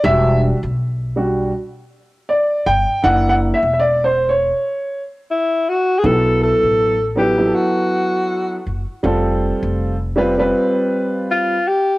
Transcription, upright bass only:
X:1
M:4/4
L:1/16
Q:"Swing 16ths" 1/4=80
K:Bm
V:1 name="Upright bass" clef=bass
E,,,3 B,,,4- B,,, z6 G,,, z | F,,,3 E,,,4- E,,, z8 | B,,,3 A,,,4- A,,, z6 F,,, z | =F,,,3 F,,,4- F,,, z8 |]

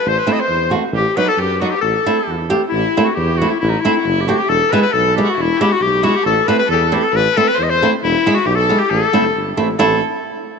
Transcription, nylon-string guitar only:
X:1
M:2/4
L:1/16
Q:1/4=136
K:none
V:1 name="Nylon-string guitar"
z2 [A,CE] z3 [A,C^F] z | z2 [^F,B,^D] z3 [F,B,D] z | z2 [A,CE] z3 [A,CG] z | z2 [A,CE] z3 [A,CE] z |
z2 [A,CE] z3 [A,CG] z | z2 [^G,B,E] z3 [G,B,E] z | z2 [^G,B,E] z3 [G,B,E] z | z2 [A,CE] z3 [A,CE] z |
z2 [A,CE] z3 [A,CE] z | z2 [^G,B,E] z3 [G,B,E] z | z2 [A,CE] z3 [A,CE] z | [A,CE]2 z6 |]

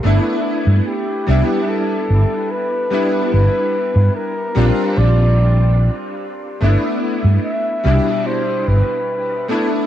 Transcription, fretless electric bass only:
X:1
M:4/4
L:1/16
Q:1/4=73
K:Clyd
V:1 name="Fretless electric bass" clef=bass
G,,, z2 G,, z2 C,, z3 G,,, z4 z | G,,, z2 G,, z2 _B,,, z B,,,4 z4 | G,,, z2 G,, z2 C,, z3 G,,, z4 z |]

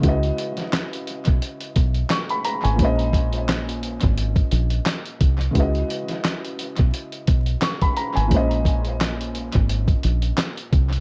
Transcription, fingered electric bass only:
X:1
M:4/4
L:1/16
Q:"Swing 16ths" 1/4=87
K:Bbm
V:1 name="Fingered electric bass" clef=bass
D,,2 z4 z _C,, z2 C,,2 z3 A,,, | B,,,6- B,,, A,,,3 B,,,2 z2 C,,2 | D,,2 z4 z _C,, z2 C,,2 z3 A,,, | B,,,6- B,,, A,,,3 B,,,2 z2 C,,2 |]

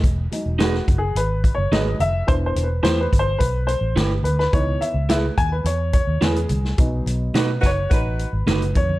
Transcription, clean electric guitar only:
X:1
M:4/4
L:1/16
Q:1/4=107
K:E
V:1 name="Clean electric guitar"
z4 [DGB] z6 z [DGB] z3 | z4 [E=GB] z6 z [EGB] z3 | z4 [EGB] z6 z [EGB] z3 | z4 [DFB] z6 z [DFB] z3 |]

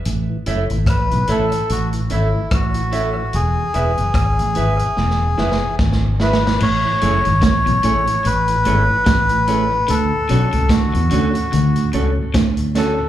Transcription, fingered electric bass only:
X:1
M:4/4
L:1/16
Q:"Swing 16ths" 1/4=73
K:A
V:1 name="Fingered electric bass" clef=bass
A,,, z F,,, G,,, A,,, B,,, A,,, z A,,,2 G,,, z A,,,4 | E,,, z E,,, F,,, G,,, A,,, G,,, z E,,,2 F,,, z G,,,4 | A,,, z F,,, G,,, A,,, B,,, A,,, z A,,,2 G,,, z A,,,4 | D,, z B,,, C,, D,, E,, D,, z D,,2 C,, z D,,4 |]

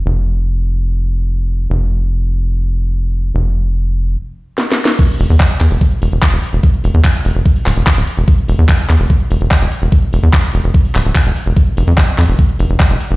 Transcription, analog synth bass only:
X:1
M:4/4
L:1/16
Q:1/4=146
K:Flyd
V:1 name="Analog synth bass" clef=bass
F,,,16 | F,,,16 | F,,,8 z8 | z2 E,,, E,, z2 E,, E,,, z2 E,,, E,,, z E,,, z E,,, |
z2 E,,, E,, z2 E,,, E,,, z2 D,,, E,,, z D,,, z E,,, | z2 E,,, E,, z2 E,, E,,, z2 E,,, E,,, z E,,, z E,,, | z2 E,,, E,, z2 E,,, E,,, z2 D,,, D,,, z E,,, z E,,, | z2 F,,, F,, z2 F,, F,,, z2 F,,, F,,, z F,,, z F,,, |]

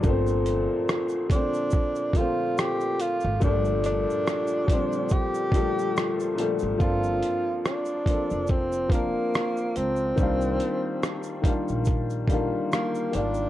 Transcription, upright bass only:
X:1
M:4/4
L:1/16
Q:"Swing 16ths" 1/4=71
K:Gm
V:1 name="Upright bass" clef=bass
G,,,3 z12 _A,,, | G,,,3 z12 _A,,, | G,,,2 z4 z F,,,4 z3 ^C,,2 | C,,2 z4 z B,,,4 z3 _A,,,2 |]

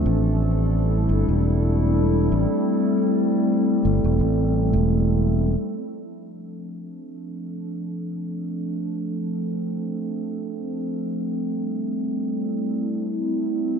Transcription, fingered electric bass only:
X:1
M:4/4
L:1/16
Q:"Swing 16ths" 1/4=87
K:Dm
V:1 name="Fingered electric bass" clef=bass
A,,,6 G,,, E,,,6 A,,, z2 | z6 G,,, E,,, A,,,3 E,,,4- E,,, | z16 | z16 |
z16 |]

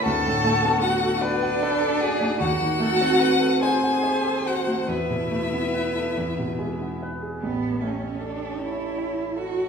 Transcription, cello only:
X:1
M:6/8
L:1/8
Q:3/8=50
K:A
V:1 name="Cello"
A2 F D3 | F3 G2 F | E4- E z | B, C D E2 F |]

